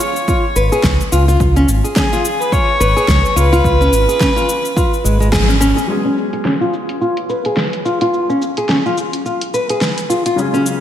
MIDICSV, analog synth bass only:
0, 0, Header, 1, 2, 480
1, 0, Start_track
1, 0, Tempo, 560748
1, 1201, Time_signature, 4, 2, 24, 8
1, 9247, End_track
2, 0, Start_track
2, 0, Title_t, "Analog synth bass"
2, 0, Program_c, 0, 38
2, 479, Note_on_c, 0, 32, 81
2, 597, Note_off_c, 0, 32, 0
2, 721, Note_on_c, 0, 37, 99
2, 838, Note_off_c, 0, 37, 0
2, 962, Note_on_c, 0, 37, 79
2, 1170, Note_off_c, 0, 37, 0
2, 1199, Note_on_c, 0, 37, 96
2, 1409, Note_off_c, 0, 37, 0
2, 1438, Note_on_c, 0, 32, 79
2, 1557, Note_off_c, 0, 32, 0
2, 2401, Note_on_c, 0, 32, 77
2, 2518, Note_off_c, 0, 32, 0
2, 2638, Note_on_c, 0, 37, 99
2, 2757, Note_off_c, 0, 37, 0
2, 2879, Note_on_c, 0, 37, 85
2, 3089, Note_off_c, 0, 37, 0
2, 3119, Note_on_c, 0, 37, 103
2, 3329, Note_off_c, 0, 37, 0
2, 3359, Note_on_c, 0, 32, 83
2, 3477, Note_off_c, 0, 32, 0
2, 4322, Note_on_c, 0, 32, 79
2, 4906, Note_off_c, 0, 32, 0
2, 9247, End_track
0, 0, End_of_file